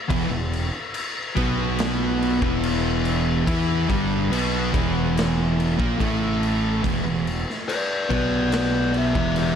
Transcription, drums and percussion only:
0.10 kick, crash
0.53 crash
0.94 crash
1.37 kick, crash
1.79 snare, crash
2.22 crash
2.42 kick
2.63 crash
3.05 crash
3.47 kick, crash
3.90 kick, crash
4.33 crash
4.74 kick, crash
5.17 snare, crash
5.60 crash
5.80 kick
6.00 kick, crash
6.43 crash
6.84 kick, crash
7.27 crash
7.50 snare
7.69 crash
8.11 kick, crash
8.52 snare, crash
8.94 crash
9.15 kick
9.36 crash

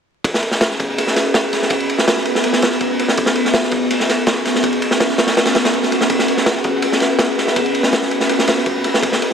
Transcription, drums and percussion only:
0.24 kick, ride
0.34 snare
0.43 ride
0.51 snare
0.61 snare, ride
0.71 snare
0.80 kick, ride
0.98 ride
1.07 snare
1.16 snare, ride
1.34 snare, ride
1.53 snare, ride
1.63 snare
1.70 kick, ride
1.80 ride
1.90 ride
1.98 snare
2.08 snare, ride
2.17 snare
2.25 ride
2.35 snare
2.44 ride
2.53 snare
2.62 snare, ride
2.71 snare
2.81 kick, ride
2.99 ride
3.08 snare
3.17 kick, ride
3.26 snare
3.36 ride
3.45 snare
3.54 snare, ride
3.64 snare
3.71 kick, ride
3.91 ride
4.00 snare
4.09 snare, ride
4.27 snare, ride
4.45 snare, ride
4.55 snare
4.63 kick, ride
4.73 ride
4.82 ride
4.91 snare
5.00 snare, ride
5.10 snare
5.18 snare, ride
5.27 snare, ride
5.37 snare, ride
5.45 snare, ride
5.55 snare, ride
5.65 snare, ride
5.74 ride
5.83 snare
5.92 ride
6.01 snare
6.10 kick, ride
6.19 snare
6.28 ride
6.37 snare
6.46 snare, ride
6.55 snare
6.64 kick, ride
6.82 ride
6.92 snare
7.00 snare, ride
7.19 snare, ride
7.38 snare, ride
7.47 snare
7.56 kick, ride
7.66 ride
7.75 ride
7.83 snare
7.93 snare, ride
8.02 snare
8.11 ride
8.20 snare
8.29 ride
8.39 snare
8.47 snare, ride
8.57 snare
8.66 kick, ride
8.84 ride
8.94 snare
9.03 kick, ride
9.12 snare
9.22 ride

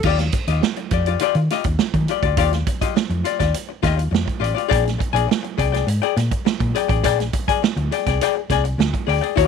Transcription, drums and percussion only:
0.03 kick, crash
0.19 snare, closed hi-hat
0.32 kick, closed hi-hat
0.47 closed hi-hat
0.63 snare
0.76 closed hi-hat
0.91 kick, closed hi-hat
1.06 closed hi-hat
1.19 closed hi-hat
1.34 closed hi-hat
1.50 snare, closed hi-hat
1.64 kick, closed hi-hat
1.79 snare
1.94 kick, closed hi-hat
2.08 closed hi-hat
2.23 kick, closed hi-hat
2.37 kick, closed hi-hat
2.53 snare, closed hi-hat
2.67 kick, closed hi-hat
2.81 kick, closed hi-hat
2.97 snare
3.10 closed hi-hat
3.25 closed hi-hat
3.40 kick, snare, closed hi-hat
3.54 closed hi-hat
3.83 kick, snare, closed hi-hat
3.99 closed hi-hat
4.15 snare
4.28 kick, closed hi-hat
4.44 closed hi-hat
4.58 closed hi-hat
4.71 kick, closed hi-hat
4.87 snare, closed hi-hat
5.00 kick, closed hi-hat
5.16 closed hi-hat
5.31 snare
5.44 closed hi-hat
5.58 kick, closed hi-hat
5.74 snare, closed hi-hat
5.88 closed hi-hat
6.03 closed hi-hat
6.17 snare, closed hi-hat
6.31 kick, closed hi-hat
6.46 snare
6.60 kick, closed hi-hat
6.75 closed hi-hat
6.89 kick, closed hi-hat
7.04 kick, closed hi-hat
7.20 snare, closed hi-hat
7.33 kick, closed hi-hat
7.48 kick, closed hi-hat
7.64 snare
7.77 closed hi-hat
7.92 closed hi-hat
8.06 kick, snare, closed hi-hat
8.21 closed hi-hat
8.50 kick, snare, closed hi-hat
8.65 closed hi-hat
8.80 snare
8.94 kick, closed hi-hat
9.09 open hi-hat
9.23 closed hi-hat
9.37 kick, closed hi-hat

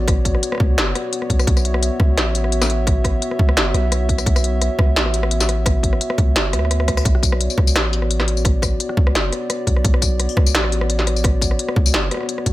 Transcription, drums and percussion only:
0.08 kick, cross-stick, closed hi-hat
0.25 kick, closed hi-hat
0.35 cross-stick
0.43 closed hi-hat
0.52 cross-stick
0.55 cross-stick
0.58 kick, cross-stick
0.78 cross-stick, snare, closed hi-hat
0.95 cross-stick, closed hi-hat
1.13 closed hi-hat
1.22 cross-stick
1.30 kick, closed hi-hat
1.39 cross-stick, tambourine
1.47 kick, closed hi-hat
1.57 cross-stick, tambourine
1.65 closed hi-hat
1.74 cross-stick
1.83 closed hi-hat
2.00 kick, cross-stick
2.18 cross-stick, snare, closed hi-hat
2.35 closed hi-hat
2.44 cross-stick
2.52 closed hi-hat
2.62 cross-stick, snare, tambourine
2.70 closed hi-hat
2.87 kick, cross-stick, closed hi-hat
3.04 kick, cross-stick, closed hi-hat
3.22 closed hi-hat
3.31 cross-stick
3.39 kick
3.49 cross-stick
3.57 snare, closed hi-hat
3.74 cross-stick, closed hi-hat
3.92 cross-stick, closed hi-hat
4.09 kick, closed hi-hat
4.18 cross-stick, tambourine
4.26 kick, closed hi-hat
4.36 cross-stick, tambourine
4.44 closed hi-hat
4.62 cross-stick, closed hi-hat
4.79 kick, cross-stick
4.96 snare
5.06 cross-stick
5.14 closed hi-hat
5.23 cross-stick
5.31 closed hi-hat
5.40 snare, tambourine
5.49 cross-stick, closed hi-hat
5.66 kick, cross-stick, closed hi-hat
5.83 kick, closed hi-hat
5.93 cross-stick
6.01 closed hi-hat
6.10 cross-stick
6.18 kick, closed hi-hat
6.36 cross-stick, snare, closed hi-hat
6.53 cross-stick, closed hi-hat
6.59 cross-stick
6.65 cross-stick
6.71 cross-stick, closed hi-hat
6.80 cross-stick
6.88 kick, cross-stick, closed hi-hat
6.97 cross-stick, tambourine
7.05 kick, closed hi-hat
7.15 cross-stick
7.23 kick, closed hi-hat, tambourine
7.32 cross-stick
7.41 closed hi-hat
7.50 tambourine
7.58 kick, cross-stick
7.67 tambourine
7.76 cross-stick, snare, closed hi-hat
7.93 closed hi-hat
8.02 cross-stick
8.11 closed hi-hat
8.20 cross-stick, snare
8.28 closed hi-hat
8.37 tambourine
8.45 kick, cross-stick, closed hi-hat
8.62 kick, cross-stick, tambourine
8.80 closed hi-hat
8.89 cross-stick
8.97 kick
9.07 cross-stick
9.15 snare, closed hi-hat
9.32 cross-stick, closed hi-hat
9.50 cross-stick, closed hi-hat
9.67 kick, closed hi-hat
9.76 cross-stick
9.84 kick, closed hi-hat
9.94 cross-stick
10.02 kick, closed hi-hat, tambourine
10.20 cross-stick, closed hi-hat
10.29 tambourine
10.37 kick, cross-stick
10.46 tambourine
10.55 snare, closed hi-hat
10.64 cross-stick
10.72 closed hi-hat
10.81 cross-stick
10.90 closed hi-hat
10.99 snare
11.07 cross-stick, closed hi-hat
11.16 tambourine
11.24 kick, cross-stick, closed hi-hat
11.41 kick, closed hi-hat, tambourine
11.51 cross-stick
11.59 closed hi-hat
11.68 cross-stick
11.76 kick
11.86 tambourine
11.94 cross-stick, snare, closed hi-hat
12.11 cross-stick, closed hi-hat
12.14 cross-stick
12.17 cross-stick
12.21 cross-stick
12.23 cross-stick
12.26 cross-stick, closed hi-hat
12.38 cross-stick
12.46 kick, closed hi-hat

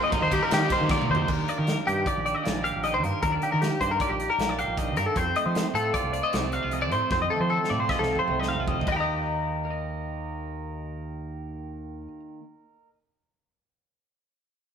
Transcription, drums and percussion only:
0.12 kick, ride
0.32 kick, ride
0.51 snare, ride
0.70 kick, snare, ride
0.89 kick, snare
1.02 mid tom
1.15 floor tom
1.28 kick, crash
1.48 closed hi-hat
1.67 snare, closed hi-hat
1.88 closed hi-hat
2.06 kick, closed hi-hat
2.26 closed hi-hat
2.45 snare, closed hi-hat
2.65 closed hi-hat
2.84 closed hi-hat
3.04 closed hi-hat
3.23 kick, closed hi-hat
3.42 closed hi-hat
3.62 snare, closed hi-hat
3.81 kick, closed hi-hat
4.00 kick, closed hi-hat
4.20 closed hi-hat
4.39 snare, closed hi-hat
4.59 closed hi-hat
4.78 kick, closed hi-hat
4.97 closed hi-hat
5.16 kick, closed hi-hat
5.36 closed hi-hat
5.55 snare, closed hi-hat
5.75 closed hi-hat
5.94 kick, closed hi-hat
6.14 closed hi-hat
6.33 snare, closed hi-hat
6.52 closed hi-hat
6.71 closed hi-hat
6.92 closed hi-hat
7.11 kick, snare
7.23 high tom
7.36 high tom
7.50 high tom
7.64 snare
7.77 mid tom
7.89 kick, snare
8.03 snare
8.15 mid tom
8.28 mid tom
8.43 snare
8.55 floor tom
8.68 kick, floor tom
8.81 floor tom
8.87 kick, crash

